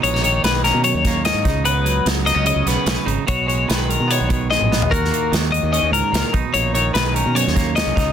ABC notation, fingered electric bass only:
X:1
M:4/4
L:1/16
Q:1/4=148
K:Cblyd
V:1 name="Fingered electric bass" clef=bass
^A,,,4 =B,,,3 =B,,2 ^D,,4 _A,, _D,,2- | D,,4 D,,3 D,,2 D,, C,, z C,, z A,,, z | C,,4 C,,3 C,2 C,,4 B,,,3 | E,,2 z2 E,,3 E,,2 E,, D,, z D,, z =B,,, z |
^A,,,4 =B,,,3 =B,,2 ^D,,4 =C,, _D,,2 |]